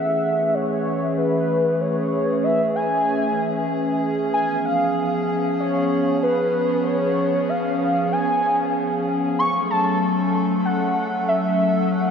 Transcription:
0, 0, Header, 1, 3, 480
1, 0, Start_track
1, 0, Key_signature, 3, "major"
1, 0, Tempo, 631579
1, 1374, Time_signature, 4, 2, 24, 8
1, 9201, End_track
2, 0, Start_track
2, 0, Title_t, "Soft synth lead"
2, 0, Program_c, 0, 80
2, 0, Note_on_c, 0, 76, 96
2, 414, Note_on_c, 0, 73, 106
2, 426, Note_off_c, 0, 76, 0
2, 894, Note_on_c, 0, 71, 96
2, 906, Note_off_c, 0, 73, 0
2, 1374, Note_on_c, 0, 73, 109
2, 1385, Note_off_c, 0, 71, 0
2, 1854, Note_on_c, 0, 76, 96
2, 1865, Note_off_c, 0, 73, 0
2, 2090, Note_off_c, 0, 76, 0
2, 2094, Note_on_c, 0, 80, 123
2, 3024, Note_off_c, 0, 80, 0
2, 3294, Note_on_c, 0, 80, 126
2, 3534, Note_on_c, 0, 77, 109
2, 3546, Note_off_c, 0, 80, 0
2, 4014, Note_off_c, 0, 77, 0
2, 4254, Note_on_c, 0, 73, 101
2, 4704, Note_off_c, 0, 73, 0
2, 4734, Note_on_c, 0, 71, 98
2, 5214, Note_on_c, 0, 73, 112
2, 5226, Note_off_c, 0, 71, 0
2, 5694, Note_on_c, 0, 77, 101
2, 5706, Note_off_c, 0, 73, 0
2, 6170, Note_off_c, 0, 77, 0
2, 6174, Note_on_c, 0, 80, 115
2, 6864, Note_off_c, 0, 80, 0
2, 7134, Note_on_c, 0, 85, 127
2, 7357, Note_off_c, 0, 85, 0
2, 7374, Note_on_c, 0, 81, 109
2, 7824, Note_off_c, 0, 81, 0
2, 8094, Note_on_c, 0, 78, 94
2, 8544, Note_off_c, 0, 78, 0
2, 8574, Note_on_c, 0, 76, 95
2, 9055, Note_on_c, 0, 78, 116
2, 9066, Note_off_c, 0, 76, 0
2, 9201, Note_off_c, 0, 78, 0
2, 9201, End_track
3, 0, Start_track
3, 0, Title_t, "Ambient pad"
3, 0, Program_c, 1, 92
3, 0, Note_on_c, 1, 52, 84
3, 0, Note_on_c, 1, 57, 77
3, 0, Note_on_c, 1, 61, 78
3, 0, Note_on_c, 1, 68, 96
3, 3264, Note_off_c, 1, 52, 0
3, 3264, Note_off_c, 1, 57, 0
3, 3294, Note_on_c, 1, 53, 84
3, 3294, Note_on_c, 1, 59, 77
3, 7104, Note_off_c, 1, 53, 0
3, 7104, Note_off_c, 1, 59, 0
3, 7104, Note_off_c, 1, 68, 0
3, 7134, Note_on_c, 1, 54, 85
3, 7134, Note_on_c, 1, 57, 76
3, 7134, Note_on_c, 1, 69, 96
3, 9024, Note_off_c, 1, 61, 0
3, 9055, Note_on_c, 1, 59, 76
3, 9201, Note_off_c, 1, 54, 0
3, 9201, Note_off_c, 1, 57, 0
3, 9201, Note_off_c, 1, 59, 0
3, 9201, Note_off_c, 1, 69, 0
3, 9201, End_track
0, 0, End_of_file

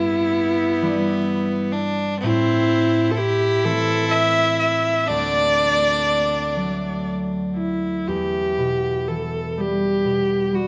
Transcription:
0, 0, Header, 1, 4, 480
1, 0, Start_track
1, 0, Key_signature, 1, "minor"
1, 0, Tempo, 946372
1, 1130, Time_signature, 6, 3, 24, 8
1, 2580, Tempo, 998336
1, 4500, Tempo, 966184
1, 5292, End_track
2, 0, Start_track
2, 0, Title_t, "Viola"
2, 0, Program_c, 0, 41
2, 0, Note_on_c, 0, 64, 91
2, 882, Note_off_c, 0, 64, 0
2, 1142, Note_on_c, 0, 64, 94
2, 1578, Note_on_c, 0, 69, 63
2, 1585, Note_off_c, 0, 64, 0
2, 1611, Note_on_c, 0, 67, 92
2, 1618, Note_off_c, 0, 69, 0
2, 1851, Note_on_c, 0, 69, 102
2, 1859, Note_off_c, 0, 67, 0
2, 2088, Note_on_c, 0, 76, 113
2, 2095, Note_off_c, 0, 69, 0
2, 2328, Note_off_c, 0, 76, 0
2, 2331, Note_on_c, 0, 76, 91
2, 2553, Note_off_c, 0, 76, 0
2, 2553, Note_on_c, 0, 76, 72
2, 2575, Note_on_c, 0, 74, 110
2, 2583, Note_off_c, 0, 76, 0
2, 3533, Note_off_c, 0, 74, 0
2, 3773, Note_on_c, 0, 64, 62
2, 4016, Note_on_c, 0, 67, 76
2, 4023, Note_off_c, 0, 64, 0
2, 4499, Note_on_c, 0, 69, 67
2, 4507, Note_off_c, 0, 67, 0
2, 4720, Note_off_c, 0, 69, 0
2, 4720, Note_on_c, 0, 69, 55
2, 4760, Note_on_c, 0, 67, 79
2, 4768, Note_off_c, 0, 69, 0
2, 5231, Note_on_c, 0, 66, 71
2, 5239, Note_off_c, 0, 67, 0
2, 5292, Note_off_c, 0, 66, 0
2, 5292, End_track
3, 0, Start_track
3, 0, Title_t, "Fiddle"
3, 0, Program_c, 1, 110
3, 0, Note_on_c, 1, 59, 94
3, 876, Note_on_c, 1, 62, 90
3, 883, Note_off_c, 1, 59, 0
3, 1110, Note_off_c, 1, 62, 0
3, 1113, Note_on_c, 1, 60, 105
3, 1581, Note_off_c, 1, 60, 0
3, 1597, Note_on_c, 1, 64, 126
3, 2567, Note_on_c, 1, 62, 102
3, 2575, Note_off_c, 1, 64, 0
3, 3772, Note_off_c, 1, 62, 0
3, 5292, End_track
4, 0, Start_track
4, 0, Title_t, "Harp"
4, 0, Program_c, 2, 46
4, 0, Note_on_c, 2, 43, 67
4, 0, Note_on_c, 2, 57, 37
4, 0, Note_on_c, 2, 60, 44
4, 414, Note_on_c, 2, 52, 45
4, 415, Note_on_c, 2, 55, 43
4, 418, Note_on_c, 2, 62, 50
4, 494, Note_off_c, 2, 60, 0
4, 658, Note_off_c, 2, 57, 0
4, 1132, Note_on_c, 2, 45, 73
4, 1155, Note_off_c, 2, 43, 0
4, 1155, Note_off_c, 2, 52, 0
4, 1155, Note_off_c, 2, 55, 0
4, 1837, Note_off_c, 2, 62, 0
4, 1848, Note_on_c, 2, 52, 51
4, 1851, Note_on_c, 2, 57, 44
4, 1856, Note_on_c, 2, 60, 56
4, 2584, Note_on_c, 2, 38, 73
4, 2604, Note_off_c, 2, 45, 0
4, 2604, Note_off_c, 2, 52, 0
4, 3288, Note_off_c, 2, 57, 0
4, 3288, Note_on_c, 2, 54, 43
4, 3290, Note_on_c, 2, 57, 38
4, 3295, Note_on_c, 2, 62, 49
4, 3336, Note_off_c, 2, 60, 0
4, 4021, Note_on_c, 2, 40, 58
4, 4044, Note_off_c, 2, 38, 0
4, 4044, Note_off_c, 2, 54, 0
4, 4259, Note_on_c, 2, 47, 44
4, 4504, Note_on_c, 2, 52, 45
4, 4645, Note_off_c, 2, 62, 0
4, 4746, Note_on_c, 2, 55, 46
4, 4903, Note_off_c, 2, 57, 0
4, 4974, Note_off_c, 2, 47, 0
4, 4980, Note_on_c, 2, 47, 45
4, 5009, Note_off_c, 2, 52, 0
4, 5211, Note_off_c, 2, 55, 0
4, 5217, Note_on_c, 2, 55, 50
4, 5292, Note_off_c, 2, 40, 0
4, 5292, Note_off_c, 2, 47, 0
4, 5292, Note_off_c, 2, 55, 0
4, 5292, End_track
0, 0, End_of_file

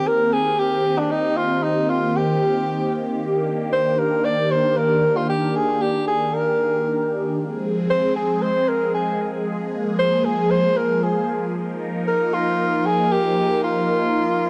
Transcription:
0, 0, Header, 1, 3, 480
1, 0, Start_track
1, 0, Key_signature, -3, "minor"
1, 0, Tempo, 521739
1, 1029, Time_signature, 4, 2, 24, 8
1, 13338, End_track
2, 0, Start_track
2, 0, Title_t, "Alto saxophone"
2, 0, Program_c, 0, 65
2, 67, Note_on_c, 0, 70, 105
2, 306, Note_on_c, 0, 68, 102
2, 320, Note_off_c, 0, 70, 0
2, 544, Note_on_c, 0, 67, 105
2, 558, Note_off_c, 0, 68, 0
2, 905, Note_on_c, 0, 62, 90
2, 919, Note_off_c, 0, 67, 0
2, 1023, Note_on_c, 0, 63, 93
2, 1037, Note_off_c, 0, 62, 0
2, 1264, Note_on_c, 0, 65, 95
2, 1277, Note_off_c, 0, 63, 0
2, 1504, Note_on_c, 0, 63, 88
2, 1518, Note_off_c, 0, 65, 0
2, 1746, Note_on_c, 0, 65, 91
2, 1760, Note_off_c, 0, 63, 0
2, 1990, Note_on_c, 0, 67, 86
2, 2003, Note_off_c, 0, 65, 0
2, 2709, Note_off_c, 0, 67, 0
2, 3430, Note_on_c, 0, 72, 101
2, 3671, Note_on_c, 0, 70, 103
2, 3685, Note_off_c, 0, 72, 0
2, 3909, Note_on_c, 0, 74, 110
2, 3923, Note_off_c, 0, 70, 0
2, 4150, Note_on_c, 0, 72, 104
2, 4164, Note_off_c, 0, 74, 0
2, 4391, Note_on_c, 0, 70, 106
2, 4405, Note_off_c, 0, 72, 0
2, 4752, Note_on_c, 0, 65, 91
2, 4765, Note_off_c, 0, 70, 0
2, 4866, Note_off_c, 0, 65, 0
2, 4871, Note_on_c, 0, 67, 95
2, 5113, Note_on_c, 0, 68, 91
2, 5127, Note_off_c, 0, 67, 0
2, 5351, Note_on_c, 0, 67, 90
2, 5365, Note_off_c, 0, 68, 0
2, 5585, Note_off_c, 0, 67, 0
2, 5590, Note_on_c, 0, 68, 93
2, 5832, Note_on_c, 0, 70, 89
2, 5845, Note_off_c, 0, 68, 0
2, 6550, Note_off_c, 0, 70, 0
2, 7271, Note_on_c, 0, 72, 105
2, 7493, Note_off_c, 0, 72, 0
2, 7509, Note_on_c, 0, 68, 90
2, 7748, Note_on_c, 0, 72, 102
2, 7762, Note_off_c, 0, 68, 0
2, 7988, Note_on_c, 0, 70, 98
2, 8002, Note_off_c, 0, 72, 0
2, 8223, Note_off_c, 0, 70, 0
2, 8229, Note_on_c, 0, 68, 80
2, 8564, Note_off_c, 0, 68, 0
2, 9190, Note_on_c, 0, 72, 111
2, 9430, Note_on_c, 0, 68, 94
2, 9444, Note_off_c, 0, 72, 0
2, 9668, Note_on_c, 0, 72, 103
2, 9682, Note_off_c, 0, 68, 0
2, 9909, Note_on_c, 0, 70, 96
2, 9923, Note_off_c, 0, 72, 0
2, 10150, Note_on_c, 0, 68, 81
2, 10164, Note_off_c, 0, 70, 0
2, 10509, Note_off_c, 0, 68, 0
2, 11111, Note_on_c, 0, 70, 106
2, 11349, Note_on_c, 0, 65, 96
2, 11363, Note_off_c, 0, 70, 0
2, 11830, Note_on_c, 0, 68, 102
2, 11844, Note_off_c, 0, 65, 0
2, 12068, Note_on_c, 0, 67, 99
2, 12082, Note_off_c, 0, 68, 0
2, 12543, Note_off_c, 0, 67, 0
2, 12548, Note_on_c, 0, 65, 93
2, 13338, Note_off_c, 0, 65, 0
2, 13338, End_track
3, 0, Start_track
3, 0, Title_t, "Analog synth pad"
3, 0, Program_c, 1, 89
3, 0, Note_on_c, 1, 51, 84
3, 0, Note_on_c, 1, 58, 75
3, 0, Note_on_c, 1, 60, 73
3, 0, Note_on_c, 1, 67, 93
3, 2912, Note_off_c, 1, 60, 0
3, 2950, Note_on_c, 1, 62, 75
3, 6752, Note_off_c, 1, 51, 0
3, 6752, Note_off_c, 1, 58, 0
3, 6753, Note_off_c, 1, 62, 0
3, 6753, Note_off_c, 1, 67, 0
3, 6785, Note_on_c, 1, 56, 74
3, 6786, Note_on_c, 1, 53, 85
3, 6786, Note_on_c, 1, 60, 73
3, 6786, Note_on_c, 1, 68, 92
3, 8688, Note_off_c, 1, 60, 0
3, 8709, Note_on_c, 1, 58, 74
3, 10590, Note_off_c, 1, 56, 0
3, 10591, Note_off_c, 1, 68, 0
3, 10610, Note_off_c, 1, 58, 0
3, 10628, Note_on_c, 1, 63, 74
3, 10628, Note_on_c, 1, 70, 90
3, 10629, Note_on_c, 1, 58, 72
3, 13338, Note_off_c, 1, 53, 0
3, 13338, Note_off_c, 1, 58, 0
3, 13338, Note_off_c, 1, 63, 0
3, 13338, Note_off_c, 1, 70, 0
3, 13338, End_track
0, 0, End_of_file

